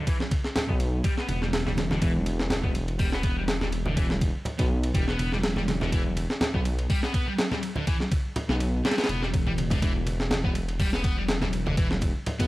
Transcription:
0.07 distorted electric guitar E3, kick, ride
0.20 snare
0.31 kick, ride, high conga
0.44 snare
0.56 snare, ride, low conga
0.69 detuned saw bass B1, distorted electric guitar B3, kick
0.80 ride
1.04 distorted electric guitar G3, kick, ride
1.18 distorted electric guitar B3, snare
1.29 detuned saw bass E1, distorted electric guitar B3, ride, high conga
1.42 distorted electric guitar G3, snare
1.53 snare, ride
1.66 distorted electric guitar G3, snare, low conga
1.77 snare, ride, high conga
1.91 distorted electric guitar D3, snare, low conga
2.02 detuned saw bass E1, distorted electric guitar E3, kick, ride
2.26 ride, high conga
2.39 snare
2.50 snare, ride, low conga
2.64 distorted electric guitar B3, kick
2.75 ride
2.88 ride
2.99 distorted electric guitar G3, kick, open hi-hat
3.12 distorted electric guitar B3, snare
3.23 distorted electric guitar B3, kick, ride
3.37 distorted electric guitar G3
3.48 snare, ride
3.61 distorted electric guitar G3, snare, low conga
3.72 ride
3.86 distorted electric guitar D3, low conga
3.97 distorted electric guitar E3, kick, ride
4.10 snare
4.21 kick, ride, high conga
4.45 ride, low conga
4.59 detuned saw bass B1, distorted electric guitar B3, kick, ride
4.84 ride
4.95 detuned saw bass E1, distorted electric guitar G3, kick, ride
5.08 distorted electric guitar B3, snare
5.19 detuned saw bass E1, distorted electric guitar B3, ride, high conga
5.32 distorted electric guitar G3, snare
5.43 snare, ride
5.56 distorted electric guitar G3, snare, low conga
5.68 snare, ride, high conga
5.81 distorted electric guitar D3, snare, low conga
5.92 distorted electric guitar E3, kick, ride
6.16 ride, high conga
6.30 snare
6.41 snare, ride, low conga
6.54 detuned saw bass B1, distorted electric guitar B3, kick
6.65 ride
6.79 ride
6.90 distorted electric guitar G3, kick, open hi-hat
7.03 distorted electric guitar B3, snare
7.14 distorted electric guitar B3, kick, ride
7.27 distorted electric guitar G3
7.38 snare, ride
7.51 distorted electric guitar G3, snare, low conga
7.63 ride
7.76 distorted electric guitar D3, low conga
7.87 distorted electric guitar E3, kick, ride
8.00 snare
8.11 kick, ride, high conga
8.36 ride, low conga
8.49 detuned saw bass B1, distorted electric guitar B3, snare
8.60 ride
8.85 distorted electric guitar G3, snare, ride
8.91 snare, ride
8.98 distorted electric guitar B3, snare, ride
9.04 snare, ride
9.09 detuned saw bass E1, distorted electric guitar B3, ride, high conga
9.22 distorted electric guitar G3, snare
9.34 kick, ride
9.47 distorted electric guitar G3, low conga
9.58 ride, high conga
9.70 distorted electric guitar D3, kick, ride, low conga
9.82 detuned saw bass E1, distorted electric guitar E3, kick, ride
10.06 ride, high conga
10.20 snare
10.31 snare, ride, low conga
10.44 distorted electric guitar B3, kick
10.55 ride
10.68 ride
10.80 distorted electric guitar G3, kick, open hi-hat
10.93 distorted electric guitar B3, snare
11.04 distorted electric guitar B3, kick, ride
11.17 distorted electric guitar G3
11.28 snare, ride
11.42 distorted electric guitar G3, snare, low conga
11.53 ride
11.66 distorted electric guitar D3, low conga
11.77 distorted electric guitar E3, kick, ride
11.91 snare
12.01 kick, ride, high conga
12.26 ride, low conga
12.39 detuned saw bass B1, distorted electric guitar B3, kick, ride

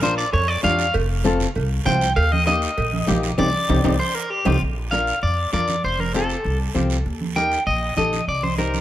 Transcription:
Already playing: upright bass A#1
0.02 nylon-string guitar D4 F4 A#4, clean electric guitar C5, high conga, short guiro
0.18 clean electric guitar D5, short guiro
0.33 upright bass F2, clean electric guitar C#5, cowbell, high conga, long guiro
0.48 clean electric guitar D5
0.63 upright bass F2, nylon-string guitar D4 F4 G4, clean electric guitar F5, high conga, low timbale, short guiro
0.79 short guiro
0.94 upright bass F1, cowbell, high conga, long guiro
1.24 nylon-string guitar C4 F4 A4, high conga, short guiro
1.40 low conga, short guiro
1.55 upright bass C2, cowbell, high conga, long guiro
1.85 upright bass C2, nylon-string guitar C4 F4 C5, clean electric guitar G5, high conga, low conga, low timbale, short guiro
2.01 short guiro
2.16 upright bass D#2, clean electric guitar F5, cowbell, high conga, long guiro
2.32 clean electric guitar D#5, high conga
2.47 nylon-string guitar A#3 D#4 G4, clean electric guitar D#5, high conga, short guiro
2.62 short guiro
2.78 upright bass A#1, cowbell, high conga, long guiro
2.93 high conga
3.07 upright bass A#1, nylon-string guitar A#3 D#4 G4, high conga, low timbale, short guiro
3.23 short guiro
3.38 upright bass C2, nylon-string guitar C4 D#4 G4, clean electric guitar D5, high conga, high timbale, long guiro
3.69 upright bass C2, nylon-string guitar C4 D#4 G4, high conga, high timbale, long guiro
3.84 upright bass C2, nylon-string guitar C4 D#4 G4, high conga, high timbale, long guiro
3.99 clean electric guitar C5
4.15 clean electric guitar A#4
4.30 clean electric guitar G4
4.45 upright bass C2, nylon-string guitar C4 D#4 G4, clean electric guitar F4, high conga, high timbale, long guiro
4.61 upright bass A#1, long guiro
4.91 nylon-string guitar D4 F4 A#4, clean electric guitar F5, high conga, short guiro
5.07 short guiro
5.22 upright bass F2, clean electric guitar D5, high conga, long guiro
5.52 upright bass F2, nylon-string guitar D4 F4 A#4, clean electric guitar D5, high conga, short guiro
5.68 high conga, short guiro
5.84 upright bass F1, clean electric guitar C5, high conga, long guiro
5.99 clean electric guitar A#4, high conga
6.14 nylon-string guitar C4 F4 A4, clean electric guitar A4, high conga, short guiro
6.29 short guiro
6.45 upright bass C2, high conga, long guiro
6.75 upright bass C2, nylon-string guitar C4 F4 G4, high conga, short guiro
6.90 short guiro
7.06 upright bass D#2, high conga, long guiro
7.21 high conga
7.36 nylon-string guitar D#4 G4 A#4, clean electric guitar G5, high conga, short guiro
7.52 short guiro
7.67 upright bass A#1, clean electric guitar D#5, high conga, long guiro
7.97 upright bass A#1, nylon-string guitar D#4 G4 A4, clean electric guitar D#5, high conga, short guiro
8.13 high conga, short guiro
8.28 upright bass C2, clean electric guitar D5, high conga, long guiro
8.43 clean electric guitar C5, high conga
8.58 nylon-string guitar D#4 G4 C5, clean electric guitar A#4, high conga, short guiro
8.74 high conga, short guiro

